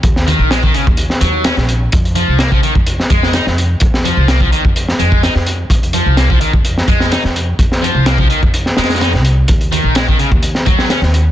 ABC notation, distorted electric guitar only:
X:1
M:4/4
L:1/16
Q:1/4=127
K:Fphr
V:1 name="Distorted electric guitar" clef=bass
z2 E,2 A, E, D, z3 G,2 D z3 | z2 F,2 B, F, E, z3 A,2 E z3 | z2 F,2 B, F, E, z3 A,2 E z3 | z2 F,2 B, F, E, z3 A,2 E z3 |
z2 F,2 B, F, E, z3 A,2 E z3 | z2 E,2 A, E, D, z3 G,2 D z3 |]